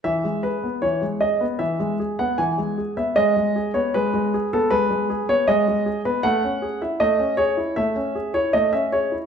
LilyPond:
<<
  \new Staff \with { instrumentName = "Grand piano" } { \time 4/4 \key e \major \tempo 4 = 78 e''8 b'8 cis''8 dis''8 e''8. fis''16 gis''8. e''16 | dis''8. cis''16 b'8. a'16 b'8. cis''16 dis''8. b'16 | fis''8. e''16 dis''8 cis''8 e''8. cis''16 dis''16 e''16 cis''8 | }
  \new Staff \with { instrumentName = "Grand piano" } { \time 4/4 \key e \major e16 gis16 gis'16 b16 e16 gis16 gis'16 b16 e16 gis16 gis'16 b16 e16 gis16 gis'16 b16 | gis16 gis16 gis'16 b16 gis16 gis16 gis'16 b16 gis16 gis16 gis'16 b16 gis16 gis16 gis'16 b16 | a16 cis'16 gis'16 e'16 a16 cis'16 gis'16 e'16 a16 cis'16 gis'16 e'16 a16 cis'16 gis'16 e'16 | }
>>